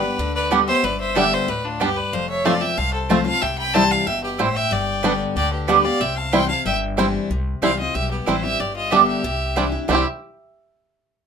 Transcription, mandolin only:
0.50 0.60 B3 medium
0.50 0.60 G4 loud
0.50 0.60 D5 medium
0.50 0.60 G5 loud
1.15 1.25 B3 loud
1.15 1.25 G4 medium
1.15 1.25 D5 loud
1.15 1.25 G5 loud
1.80 1.89 B3 medium
1.80 1.90 G4 loud
1.80 1.90 D5 loud
1.80 1.90 G5 loud
2.44 2.54 C4 medium
2.44 2.54 F4 medium
2.44 2.54 C5 loud
2.44 2.55 A5 loud
3.09 3.19 C4 medium
3.09 3.19 F4 medium
3.09 3.19 C5 loud
3.09 3.19 A5 loud
3.74 3.84 C4 loud
3.74 3.84 E4 loud
3.74 3.84 C5 medium
3.74 3.84 G5 loud
4.38 4.48 C4 medium
4.38 4.48 E4 loud
4.38 4.48 C5 loud
4.38 4.48 G5 loud
5.03 5.12 B3 loud
5.03 5.13 G4 medium
5.03 5.13 D5 medium
5.03 5.13 G5 loud
5.67 5.77 B3 medium
5.67 5.77 G4 medium
5.67 5.77 D5 loud
5.67 5.78 G5 medium
6.32 6.42 C4 loud
6.32 6.42 E4 loud
6.32 6.42 C5 loud
6.32 6.42 G5 medium
6.97 7.06 C4 medium
6.97 7.07 E4 medium
6.97 7.07 C5 medium
6.97 7.07 G5 loud
7.62 7.71 C4 medium
7.62 7.71 E4 loud
7.62 7.71 C5 medium
7.62 7.72 G5 medium
8.26 8.36 C4 medium
8.26 8.36 E4 loud
8.26 8.36 C5 medium
8.26 8.36 G5 medium
8.91 9.00 B3 medium
8.91 9.00 G4 loud
8.91 9.01 D5 loud
8.91 9.01 G5 loud
9.56 9.65 C4 medium
9.56 9.65 E4 medium
9.56 9.65 D5 loud
9.56 9.65 G5 loud
9.88 10.01 C4 medium
9.88 10.02 E4 medium
9.88 10.02 D5 medium
9.88 10.02 G5 loud

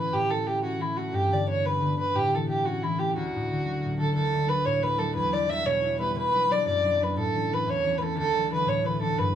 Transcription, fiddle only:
0.00 0.15 B4 medium
0.13 0.32 G4 medium
0.30 0.48 A4 medium
0.47 0.63 G4 medium
0.63 0.82 F#4 medium
0.81 0.98 E4 medium
0.97 1.16 F#4 medium
1.14 1.35 G4 medium
1.33 1.48 D5 medium
1.49 1.67 C#5 medium
1.65 1.99 B4 medium
1.99 2.17 B4 medium
2.15 2.36 G4 medium
2.35 2.48 A4 medium
2.49 2.66 G4 medium
2.65 2.85 F#4 medium
2.83 3.01 E4 medium
2.99 3.15 G4 medium
3.15 3.95 F#4 medium
4.00 4.14 A4 medium
4.15 4.50 A4 medium
4.49 4.67 B4 medium
4.66 4.84 C#5 medium
4.83 5.00 B4 medium
4.98 5.14 A4 medium
5.15 5.34 B4 medium
5.33 5.51 D5 medium
5.50 5.67 E5 loud
5.66 5.99 C#5 medium
6.00 6.15 B4 medium
6.17 6.53 B4 loud
6.52 6.66 D5 medium
6.67 7.05 D5 medium
7.03 7.18 B4 medium
7.18 7.55 A4 medium
7.53 7.71 B4 medium
7.69 7.99 C#5 medium
7.98 8.04 B4 soft
8.02 8.17 A4 medium
8.18 8.49 A4 medium
8.53 8.70 B4 medium
8.68 8.87 C#5 medium
8.86 9.01 B4 medium
9.02 9.20 A4 medium
9.18 9.35 B4 medium

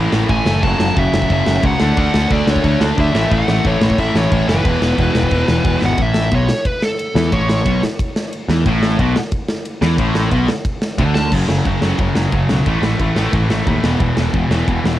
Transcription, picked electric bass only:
0.13 0.23 A1 medium
0.29 0.40 A1 medium
0.45 0.63 F#1 medium
0.63 0.73 F#1 loud
0.80 0.90 F#1 medium
0.97 1.07 F#1 medium
1.14 1.24 F#1 loud
1.30 1.40 F#1 medium
1.47 1.57 F#1 medium
1.63 1.74 C#2 medium
1.81 1.91 D2 medium
1.97 2.08 D2 loud
2.15 2.25 D2 loud
2.31 2.41 D2 medium
2.47 2.58 D2 medium
2.64 2.74 D2 loud
2.81 2.91 D2 loud
2.98 3.08 D2 loud
3.14 3.25 A1 medium
3.31 3.42 A1 loud
3.48 3.58 A1 loud
3.65 3.75 A1 medium
3.81 3.92 A1 medium
3.98 4.09 A1 loud
4.15 4.26 A1 loud
4.32 4.42 A1 loud
4.48 4.59 F#1 medium
4.65 4.75 E1 loud
4.82 4.92 E1 medium
4.98 5.09 E1 medium
5.15 5.26 E1 medium
5.31 5.42 E1 medium
5.49 5.59 E1 loud
5.64 5.75 E1 medium
5.82 5.93 G#1 medium
5.98 6.29 A1 loud
6.32 6.48 B1 medium
7.15 7.31 E2 medium
7.32 7.63 A1 loud
7.65 7.81 B1 medium
8.48 8.64 E2 medium
8.66 8.97 A1 loud
8.99 9.14 B1 loud
9.82 9.98 E2 medium
9.98 10.30 A1 loud
10.32 10.48 B1 loud
10.98 11.30 D2 loud
11.32 11.43 F#1 medium
11.48 11.59 F#1 medium
11.66 11.76 F#1 medium
11.82 11.93 F#1 medium
11.99 12.10 F#1 medium
12.15 12.26 F#1 medium
12.33 12.43 F#1 medium
12.49 12.60 B1 medium
12.66 12.77 A1 medium
12.82 12.93 A1 medium
12.99 13.10 A1 medium
13.16 13.27 A1 medium
13.33 13.44 A1 medium
13.50 13.61 A1 medium
13.67 13.77 D#2 medium
13.84 13.94 E1 medium
14.00 14.11 E1 loud
14.17 14.28 E1 medium
14.33 14.44 E1 medium
14.51 14.62 E1 medium
14.68 14.78 E1 medium
14.84 14.95 E1 medium

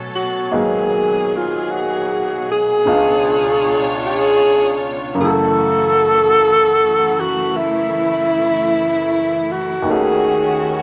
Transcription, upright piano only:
0.00 0.52 A2 soft
0.00 0.54 E3 soft
0.00 0.51 B3 soft
0.00 0.54 C#4 soft
0.00 0.55 F#4 soft
0.51 2.86 G#2 medium
0.51 2.86 D#3 soft
0.51 2.87 F#3 medium
0.51 2.86 A#3 soft
0.51 2.86 B3 soft
2.85 5.19 C#2 medium
2.85 5.16 C#3 soft
2.85 5.20 B3 soft
2.85 5.20 D4 soft
2.85 5.20 F4 medium
5.15 9.84 F#2 medium
5.15 9.85 C#3 medium
5.20 9.86 A3 medium
5.20 9.88 E4 medium
5.25 9.89 A4 medium
9.82 10.82 D#2 soft
9.82 10.82 D#3 soft
9.88 10.82 A3 soft
9.88 10.82 C#4 soft
9.93 10.82 F#4 medium

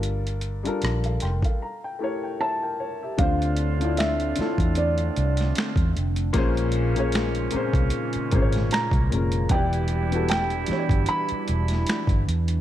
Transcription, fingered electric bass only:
0.00 0.68 G1 medium
0.83 1.17 A#1 medium
1.23 1.42 F1 medium
3.19 4.33 D2 loud
4.39 muted fingered electric bass stroke soft
4.59 5.09 E2 medium
5.17 5.51 C2 medium
5.77 5.92 E2 medium
5.96 6.30 F1 medium
6.35 7.49 A#1 medium
7.54 muted fingered electric bass stroke medium
7.74 7.90 C2 medium
8.16 muted fingered electric bass stroke soft
8.33 8.67 G#1 medium
8.92 9.08 C2 medium
9.12 9.46 F1 medium
9.50 10.65 E1 loud
10.70 muted fingered electric bass stroke medium
10.90 11.06 G1 medium
11.32 muted fingered electric bass stroke soft
11.49 11.83 E1 medium
12.08 12.24 G1 medium
12.28 12.61 E2 medium

